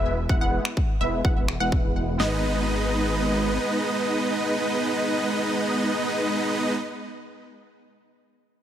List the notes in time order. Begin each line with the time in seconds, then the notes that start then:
Already playing: E1 G#3 B3 E4 B4 E5
0.29 E1 G#3 B3 E4 B4 F#5, kick
0.41 E1 G#3 B3 E4 B4 F#5
0.65 finger snap
0.77 kick
1.01 E1 G#3 B3 E4 B4 E5
1.25 E1 G#3 B3 E4 F#5, kick
1.48 finger snap
1.60 E1 G#3 B3 E4 B4 F#5
1.72 kick
2.20 G#1 G#3 B3 D#4 B4 D#5, snare